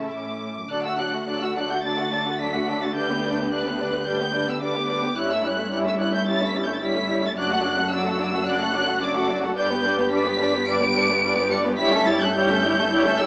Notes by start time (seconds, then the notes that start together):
Already playing: A1 C#3 A3 C#4 E4 E5
0.12 A2 D6
0.57 F#2
0.70 D2 D3 F#3 D4 A4 D5 F#6
0.85 A3 F#4 F#5 E6
0.98 F#3 D4 A4 D5 F#6
1.14 A3 F#4 F#5
1.26 F#3 D4 A4 D5 F#6
1.42 A3 F#4 F#5 E6
1.55 F#3 D4 A4 D5 F#6
1.70 A3 F#4 F#5 G6
1.83 F#3 D4 A4 D5 A6
1.98 A3 F#4 F#5
2.13 F#3 D4 A4 D5
2.27 A3 F#4 F#5
2.39 F#3 D4 A4 D5 B6
2.54 A3 F#4 F#5
2.68 F#3 D4 A4 D5
2.82 A3 F#4 F#5 A6
2.95 G3 D4 B4 D5 G6
3.09 B3 G4 B4
3.24 G3 D4 B4 D5
3.37 B3 G4 B4
3.51 G3 D4 B4 D5 F#6
3.65 B3 G4 B4
3.79 G3 D4 B4 D5
3.93 B3 G4 B4
4.06 G3 D4 B4 D5 G6
4.20 B3 G4 B4
4.34 G3 D4 B4 D5
4.47 B3 G4 B4 E6
4.61 G3 D4 B4 D5 D6
4.74 B3 G4 B4
4.88 G3 D4 B4 D5
5.02 B3 G4 B4
5.16 G1 G2 G3 C#4 E4 C#5 F#6
5.30 A3 C#4 E4 E5 E6
5.43 G3 C#4 E4 C#5 F#6
5.57 A3 C#4 E4 E5
5.71 G3 C#4 E4 C#5 F#6
5.85 A3 C#4 E4 E5 E6
5.98 G3 C#4 E4 C#5 F#6
6.12 A3 C#4 E4 E5 G6
6.26 G3 C#4 E4 C#5 A6
6.40 A3 C#4 E4 E5
6.47 B6
6.54 G3 C#4 E4 C#5 A6
6.65 A3 C#4 E4 E5 G6
6.75 A6
6.80 G3 C#4 E4 C#5 B6
6.95 A3 C#4 E4 E5
7.08 G3 C#4 E4 C#5
7.22 A3 C#4 E4 E5 A6
7.36 F#1 F#2 F#3 D4 F#4 D5 F#6
7.49 A3 F#4 A4 F#5
7.63 F#3 D4 F#4 D5
7.77 A3 F#4 A4 F#5
7.90 F#3 D4 F#4 D5 E6
8.05 A3 F#4 A4 F#5
8.18 F#3 D4 F#4 D5
8.33 A3 F#4 A4 F#5
8.46 F#3 D4 F#4 D5 F#6
8.61 A3 F#4 A4 F#5
8.74 F#3 D4 F#4 D5
8.87 A3 F#4 A4 F#5
9.01 F#3 D4 F#4 D5 D6
9.15 A3 F#4 A4 F#5
9.28 F#3 D4 F#4 D5
9.42 A3 F#4 A4 F#5
9.56 G1 G2 G3 D4 B4 D5 G6
9.70 B3 G4 B4
9.84 G3 D4 B4 D5
9.97 B3 G4 B4
10.10 G3 D4 B4 D5 B6
10.24 B3 G4 B4
10.39 G3 D4 B4 D5
10.53 B3 G4 B4
10.66 G3 D4 B4 D5 D7
10.80 B3 G4 B4
10.94 G3 D4 B4 D5
11.08 B3 G4 B4
11.23 G3 D4 B4 D5
11.36 B3 G4 B4
11.50 G3 D4 B4 D5 C#7
11.64 B3 G4 B4
11.78 G3 E4 G4 C#5 B6
11.91 A3 C#4 A4 E5
12.05 G3 E4 G4 C#5 A6
12.20 A3 C#4 A4 E5 F#6
12.34 G3 E4 G4 C#5 G6
12.48 A3 C#4 E5
12.53 A4
12.62 G3 E4 G4 C#5
12.76 A3 C#4 A4 E5
12.90 G3 E4 G4 C#5
13.04 A3 C#4 A4 E5
13.19 G3 E4 G4 C#5 E6